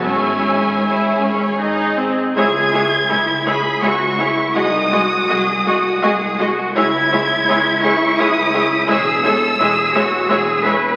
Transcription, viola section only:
\new Staff \with { instrumentName = "Viola section" } { \time 3/4 \key cis \minor \tempo 4 = 82 <cis' e'>4 e'8 cis'8 dis'8 bis8 | <gis e'>8 <gis e'>8 <gis e'>8 <gis e'>8 <gis e'>8 <gis e'>8 | <gis fis'>8 <gis fis'>8 <gis fis'>8 <gis fis'>8 <gis fis'>8 <gis fis'>8 | <gis e'>8 <gis e'>8 <gis e'>8 <gis e'>8 <gis e'>8 <gis e'>8 |
<gis e'>8 <gis e'>8 <gis e'>8 <gis e'>8 <gis e'>8 <gis e'>8 | }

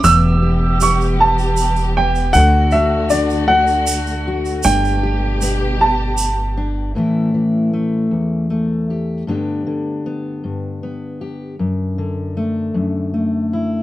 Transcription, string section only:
\new Staff \with { instrumentName = "String section" } { \time 6/8 \key a \mixolydian \tempo 4. = 52 << { <e g'>2. | <d fis'>2. | <b, g'>2. | r2. |
r2. | r2. | } \\ { b2. | a2.~ | a2. | r2. |
r2. | r2. | } >> }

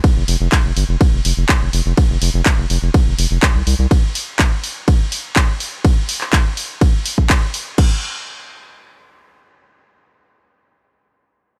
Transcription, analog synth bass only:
\new Staff \with { instrumentName = "Analog synth bass" } { \clef bass \time 4/4 \key c \phrygian \tempo 4 = 124 r16 f,,16 f,,16 f,,16 r16 f,,16 g,,16 f,,16 r16 f,,16 f,,16 f,,16 r16 f,,16 f,,16 f,,16 | r16 f,,16 f,,16 f,,16 r16 f,,16 f,,16 f,,16 r16 f,,16 f,,16 f,,16 r16 c,16 c,16 c,16 | r1 | r1 |
r1 | r1 | }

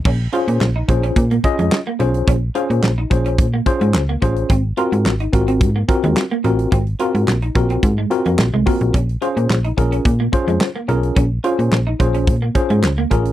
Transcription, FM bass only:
\new Staff \with { instrumentName = "FM bass" } { \clef bass \time 4/4 \key bes \minor \tempo 4 = 108 bes,,8 r16 bes,16 bes,,8 bes,,8 bes,8 r16 f,16 r8 ces,8 | bes,,8 r16 bes,16 bes,,8 bes,,8 bes,8 r16 aes,16 des,8 a,,8 | aes,,8 r16 aes,16 aes,,8 aes,,8 aes,8 r16 ees,16 r8 a,,8 | aes,,8 r16 aes,16 bes,,8 bes,,8 aes,8 r16 f,16 bes,,16 c,16 r16 bes,,16 |
bes,,8 r16 bes,16 bes,,8 bes,,8 bes,8 r16 f,16 r8 ces,8 | bes,,8 r16 bes,16 bes,,8 bes,,8 bes,8 r16 aes,16 des,8 a,,8 | }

